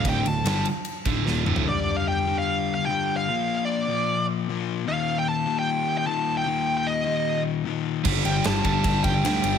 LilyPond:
<<
  \new Staff \with { instrumentName = "Lead electric guitar" } { \time 4/4 \key g \minor \tempo 4 = 150 g''8 a''4 r2 r8 | d''8. f''16 g''8. f''4 f''16 g''8. f''16~ | f''8. f''16 d''4. r4. | f''8. g''16 a''8. g''4 g''16 a''8. g''16~ |
g''8. g''16 ees''4. r4. | r8 g''8 a''8 a''4 g''4. | }
  \new Staff \with { instrumentName = "Overdriven electric guitar" } { \clef bass \time 4/4 \key g \minor <d, a, d>8 <d, a,>8 <g, d g>8 r4 <d, a, d>8 <ees, bes, ees>8 <d, a, d>8 | <g, d g>4. <g, d g>4. <g, d g>4 | <bes, f bes>4. <bes, f bes>4. <bes, f bes>4 | <ees, bes, ees>4. <ees, bes, ees>4. <ees, bes, ees>4 |
<ees, bes, ees>4. <ees, bes, ees>4. <ees, bes, ees>4 | <g, d g>4. <g, d g>4. <g, d g>4 | }
  \new Staff \with { instrumentName = "Overdriven electric guitar" } { \clef bass \time 4/4 \key g \minor <d, a, d>8 <d, a,>8 <g, d g>8 r4 <d, a, d>8 <ees, bes, ees>8 <d, a, d>8 | r1 | r1 | r1 |
r1 | <g, d g>4. <g, d g>4. <g, d g>4 | }
  \new Staff \with { instrumentName = "Picked electric bass" } { \clef bass \time 4/4 \key g \minor d,,8 d,,8 g,,8 r4 d,,8 ees,,8 d,,8 | r1 | r1 | r1 |
r1 | g,,8 g,,8 g,,8 g,,8 g,,8 g,,8 d,8 g,,8 | }
  \new DrumStaff \with { instrumentName = "Drums" } \drummode { \time 4/4 <bd cymr>8 cymr8 <cymr sn>8 cymr8 cymr8 <bd cymr>8 sn8 toml16 tomfh16 | r4 r4 r4 r4 | r4 r4 r4 r4 | r4 r4 r4 r4 |
r4 r4 r4 r4 | <cymc bd>8 cymr8 <cymr sn>8 <bd cymr>8 <bd cymr>8 <bd cymr>8 <cymr sn>8 cymr8 | }
>>